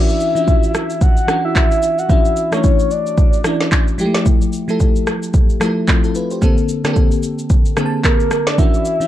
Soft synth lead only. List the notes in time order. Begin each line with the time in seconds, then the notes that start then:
Already playing: E5
1.02 F#5
1.45 E5
1.56 E5
1.99 F#5
2.10 E5
2.53 C#5
2.91 D5
8.05 A#4
8.48 D5
8.59 E5